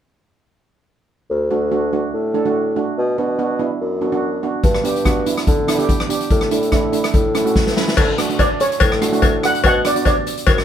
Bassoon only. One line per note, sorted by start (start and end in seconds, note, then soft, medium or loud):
1.30 1.48 D2 medium
1.51 2.04 D2 medium
2.14 2.84 A2 medium
2.98 3.15 B2 medium
3.19 3.71 B2 medium
3.81 4.52 F#2 medium
4.64 4.81 G2 medium
4.85 5.38 G2 medium
5.47 5.95 D3 medium
6.31 6.48 A2 medium
6.52 7.05 A2 medium
7.14 7.85 A2 medium
7.98 8.15 D3 medium
8.81 9.52 A2 medium
9.64 9.82 B2 medium
10.47 10.64 F#2 medium